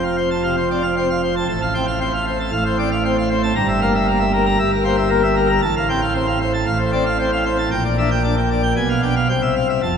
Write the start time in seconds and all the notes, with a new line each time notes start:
Already playing: F1 F2
0.04 F5
0.17 C5
0.31 A5
0.44 C3 F5
0.57 C5
0.71 C4 D5
0.83 F5
0.97 C4 C5
1.10 F5
1.23 C5
1.36 A5
1.49 A1 A2 A5
1.62 F5
1.74 C4 G5
1.87 F5
2.01 C4 C5
2.14 F5
2.27 C5
2.40 A5
2.52 A1 A2 F5
2.66 C5
2.79 C4 D5
2.92 F5
3.05 C4 C5
3.18 F5
3.30 C5
3.43 A5
3.56 G1 G2 A#5
3.68 E5
3.81 A#3 F5
3.95 E5
4.07 A#3 A#4
4.20 E5
4.33 A#4
4.46 A#5
4.59 G1 G2 E5
4.72 A#4
4.84 A#3 C5
4.97 E5
5.10 A#3 A#4
5.23 E5
5.36 A#4
5.49 A#5
5.62 A1 A2 A5
5.77 F5
5.89 C4 G5
6.02 F5
6.15 C4 C5
6.27 F5
6.41 C5
6.54 A5
6.66 A1 A2 F5
6.79 C5
6.93 C4 D5
7.06 F5
7.19 C4 C5
7.33 F5
7.45 C5
7.59 A5
7.71 A#1 A#2 G5
7.85 D5
7.98 D4 E5
8.11 G5
8.24 D4 D5
8.37 G5
8.51 D5
8.63 G5
8.76 B1 B2 G#5
8.89 F5
9.02 D4 G5
9.16 F5
9.29 C2 C3 G5
9.42 E5
9.56 F5
9.69 E5
9.82 F1 F2 A5